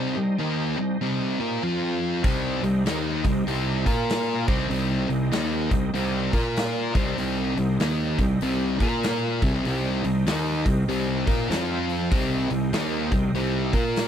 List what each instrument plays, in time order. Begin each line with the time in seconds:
Already playing: distorted electric guitar C3 G3 C4, tonewheel organ D#4 G4 C5 D#5
0.17 distorted electric guitar C3 G3
0.39 distorted electric guitar D#3 A#3 D#4
0.78 distorted electric guitar C3 G3
1.01 distorted electric guitar C3 G3 C4
1.40 distorted electric guitar A#3 F4 A#4
1.61 distorted electric guitar F3 C4 F4, tonewheel organ C4 F4 C5 F5
2.24 fingered electric bass C2, distorted electric guitar C3 G3 C4, tonewheel organ D#4 G4 C5 D#5, kick, open hi-hat
2.63 fingered electric bass C2, distorted electric guitar C3 G3, open hi-hat
2.86 fingered electric bass D#2, distorted electric guitar D#3 A#3 D#4, snare, open hi-hat
3.24 fingered electric bass C2, distorted electric guitar C3 G3, kick, open hi-hat
3.47 fingered electric bass C2, distorted electric guitar C3 G3 C4, open hi-hat
3.86 fingered electric bass A#2, distorted electric guitar A#3 F4 A#4, tonewheel organ A#3 F4 A#4 F5, kick, open hi-hat
4.10 snare, open hi-hat
4.47 fingered electric bass C2, distorted electric guitar C3 G3 C4, tonewheel organ D#4 G4 C5 D#5, kick, open hi-hat
4.69 fingered electric bass C2, distorted electric guitar C3 G3 C4, open hi-hat
5.09 fingered electric bass C2, distorted electric guitar C3 G3, open hi-hat
5.32 fingered electric bass D#2, distorted electric guitar D#3 A#3 D#4, snare, open hi-hat
5.70 fingered electric bass C2, distorted electric guitar C3 G3, kick, open hi-hat
5.93 fingered electric bass C2, distorted electric guitar C3 G3 C4, open hi-hat
6.32 fingered electric bass A#2, tonewheel organ A#3 F4 A#4 F5, distorted electric guitar A#3 F4 A#4, kick, open hi-hat
6.56 snare, open hi-hat
6.93 fingered electric bass C2, distorted electric guitar C3 G3 C4, tonewheel organ D#4 G4 C5 D#5, kick, open hi-hat
7.18 fingered electric bass C2, distorted electric guitar C3 G3 C4, open hi-hat
7.57 fingered electric bass C2, distorted electric guitar C3 G3, open hi-hat
7.80 fingered electric bass D#2, distorted electric guitar D#3 A#3 D#4, snare, open hi-hat
8.18 fingered electric bass C2, distorted electric guitar C3 G3, kick, open hi-hat
8.41 fingered electric bass C2, distorted electric guitar C3 G3 C4, open hi-hat
8.80 fingered electric bass A#2, tonewheel organ A#3 F4 A#4 F5, distorted electric guitar A#3 F4 A#4, kick, open hi-hat
9.03 snare, open hi-hat
9.41 fingered electric bass C2, distorted electric guitar C3 G3 C4, tonewheel organ E4 G#4 C#5 E5, kick, open hi-hat
9.56 tonewheel organ D#4 G4 C5 D#5
9.65 fingered electric bass C2, distorted electric guitar C3 G3 C4, open hi-hat
10.04 fingered electric bass C2, distorted electric guitar C3 G3, open hi-hat
10.27 fingered electric bass D#2, distorted electric guitar D#3 A#3 D#4, snare, open hi-hat
10.66 fingered electric bass C2, distorted electric guitar C3 G3, kick, open hi-hat
10.88 fingered electric bass C2, distorted electric guitar C3 G3 C4, open hi-hat
11.27 fingered electric bass A#2, distorted electric guitar A#3 F4 A#4, kick, open hi-hat
11.48 fingered electric bass F2, distorted electric guitar F3 C4 F4, tonewheel organ C4 F4 C5 F5, snare, open hi-hat
11.89 open hi-hat
12.11 fingered electric bass C2, distorted electric guitar C3 G3 C4, tonewheel organ D#4 G4 C5 D#5, kick, open hi-hat
12.50 fingered electric bass C2, distorted electric guitar C3 G3, open hi-hat
12.73 fingered electric bass D#2, distorted electric guitar D#3 A#3 D#4, snare, open hi-hat
13.11 fingered electric bass C2, distorted electric guitar C3 G3, kick, open hi-hat
13.34 fingered electric bass C2, distorted electric guitar C3 G3 C4, open hi-hat
13.72 fingered electric bass A#2, tonewheel organ A#3 F4 A#4 F5, distorted electric guitar A#3 F4 A#4, kick, open hi-hat
13.96 snare, open hi-hat